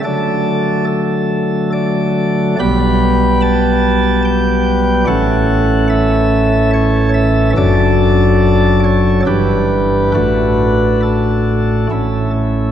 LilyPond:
<<
  \new Staff \with { instrumentName = "Pipe organ" } { \time 3/4 \key d \major \tempo 4 = 71 d''4 a'4 d''4 | b''4 a''4 g''4 | fis''4 e''4 cis''8 e''8 | d''4. cis''8 b'4 |
b'4 a'4. r8 | }
  \new Staff \with { instrumentName = "Pipe organ" } { \clef bass \time 3/4 \key d \major <d fis a a'>2. | <b,, b, g b g'>2. | <a,, a, e cis' a'>2. | <fis,, fis, fis d' a'>2 <g,, g, e d' g'>4 |
<a,, a, a d' fis'>2 <a,, a, a cis' e'>4 | }
>>